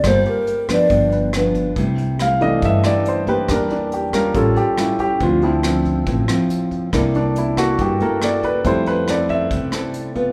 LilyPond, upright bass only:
\new Staff \with { instrumentName = "Upright bass" } { \clef bass \time 4/4 \key g \dorian \tempo 4 = 139 g,,8 r4. g,,2 | \key c \major c,2 g,8 r4. | e,2 a,,8 r4. | d,2 a,,8 r4. |
c,2 g,8 r4. | f,2 c,8 r4. | }